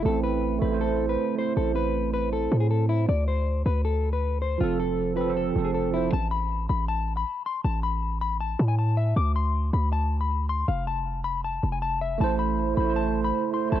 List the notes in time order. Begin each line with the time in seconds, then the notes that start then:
0.02 A1 A3 E4 A4
0.08 C4
0.23 B4
0.59 A1 A3 E4 B4
0.65 A3 C5
0.71 E4 C5
0.81 A4
1.09 B4
1.35 A3 E4 C5
1.41 C5
1.57 A1 A4
1.76 B4
2.14 B4
2.33 A4
2.52 A2
2.61 G#4
2.71 A4
2.89 E4
3.09 D2 D5
3.28 C5
3.66 D2 B4
3.85 A4
4.13 B4
4.42 C5
4.58 F1 F3 C4 F4
4.63 A4
4.80 A4
5.15 F3 C4 B4
5.20 F3 A4
5.27 C4 A4
5.37 A4
5.52 F1 F3 C4
5.58 A4
5.65 G#4
5.74 A4
5.91 F3 C4 E4
5.96 C5
6.13 A1 A5
6.31 B5
6.69 A1 B5
6.88 A5
7.17 B5
7.46 C6
7.64 A1 A5
7.83 B5
8.21 B5
8.40 A5
8.59 A2
8.68 G#5
8.79 A5
8.97 E5
9.16 D2 D6
9.36 C6
9.73 D2 B5
9.93 A5
10.21 B5
10.49 C6
10.68 F1 F5
10.87 A5
11.24 B5
11.44 A5
11.63 F1
11.72 G#5
11.82 A5
12.01 E5
12.18 A1 A3 E4 A5
12.24 C5
12.39 B5
12.74 A1 A3 E4 B5
12.80 A3 C5
12.86 E4 C5
12.96 A5
13.24 B5
13.50 A3 E4 C6
13.56 C5
13.69 A1 A3 E4 A5
13.75 C5